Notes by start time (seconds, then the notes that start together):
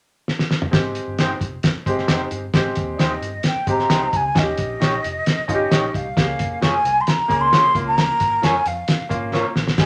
0.28 snare
0.39 snare
0.51 snare
0.62 mid tom
0.71 G#1 G#3 C4 G4, kick, snare, closed hi-hat
0.95 closed hi-hat
1.07 G1
1.19 D#4 G4 C5, snare, closed hi-hat
1.41 F1, kick, closed hi-hat
1.63 kick, snare, closed hi-hat
1.75 muted picked electric bass stroke
1.86 G1 G#3 C4 G4, kick, closed hi-hat
1.98 snare
2.08 F1 D#4 G4 C5, snare, closed hi-hat
2.31 G1, closed hi-hat
2.53 G#1 G#3 C4 G4, kick, snare, closed hi-hat
2.75 D#2, kick, closed hi-hat
2.95 D#4 D5
2.99 D#2 G4 C5, snare, closed hi-hat
3.04 D#5
3.21 G1, closed hi-hat
3.43 snare, closed hi-hat
3.48 G5
3.55 muted picked electric bass stroke
3.67 G#1 G#3 C4 G4 A#5, kick, closed hi-hat
3.79 snare
3.90 C2 D#4 G4 C5, snare, closed hi-hat
4.13 C#2 G#5, kick, closed hi-hat
4.35 D#2 C#4 D#4 F4, kick, snare, closed hi-hat
4.39 G4 D#5
4.58 A#1, kick, closed hi-hat
4.80 A#1 D#4 G4 C#5, snare, closed hi-hat
5.04 F1, closed hi-hat
5.26 snare, closed hi-hat
5.38 muted picked electric bass stroke
5.48 G1 C#4 D#4 F4, kick, closed hi-hat
5.54 G4
5.71 A#1 D#4 G4 C#5, snare, closed hi-hat
5.94 C2 F5, kick, closed hi-hat
6.17 C#2 A#3 C#4 G4, kick, snare, closed hi-hat
6.23 G#4
6.39 F1, kick, closed hi-hat
6.61 F1 F4 G#4 C#5 G#5, snare, closed hi-hat
6.84 C2, closed hi-hat
7.01 C6
7.07 A#5, snare, closed hi-hat
7.18 muted picked electric bass stroke
7.28 C#2 A#3 C#4 G#4, kick, closed hi-hat
7.41 C6
7.52 C#3 F4 G#4 C#5, snare, closed hi-hat
7.75 C#2 A#3 C#4 F4, kick, closed hi-hat
7.87 A#5
7.98 snare, closed hi-hat
8.20 G#1, kick, closed hi-hat
8.42 F2 F4 A#4 C#5 G#5, snare, closed hi-hat
8.66 F2 F5, closed hi-hat
8.88 snare, closed hi-hat
9.01 muted picked electric bass stroke
9.09 G#1 A#3 C#4 F4, kick, closed hi-hat
9.33 F4 A#4 C#5, snare
9.56 A#1, snare
9.68 snare
9.77 G#1 G3 G#3 B3 G#5, kick, snare, closed hi-hat